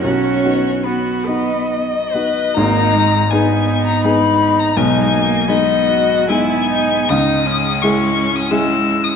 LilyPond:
<<
  \new Staff \with { instrumentName = "Violin" } { \time 3/4 \key b \major \tempo 4 = 81 cis''4 b'4 dis''4 | \key gis \minor ais''4 gis''8. ais''16 b''8. ais''16 | gis''4 dis''4 gis''4 | dis'''4 cis'''8. dis'''16 e'''8. dis'''16 | }
  \new Staff \with { instrumentName = "Grand piano" } { \time 3/4 \key b \major b,,8 <b dis' fis'>4 <b dis' fis'>4 <b dis' fis'>8 | \key gis \minor <gis,, gis,>4 <b dis' gis'>4 <b dis' gis'>4 | <b,, b,>4 <gis dis' gis'>4 <gis dis' gis'>4 | <cis, cis>4 <gis e' gis'>4 <gis e' gis'>4 | }
  \new Staff \with { instrumentName = "Viola" } { \time 3/4 \key b \major fis'4 fis'8 dis''4 b'8 | \key gis \minor dis'4 dis'2 | dis'4 dis'8 fis'8 e'8 dis'8 | dis'8 cis'2~ cis'8 | }
  \new Staff \with { instrumentName = "Cello" } { \time 3/4 \key b \major cis'4 b4. r8 | \key gis \minor ais8 gis8 b4 gis4 | gis8 ais8 b4 b4 | gis2 gis4 | }
>>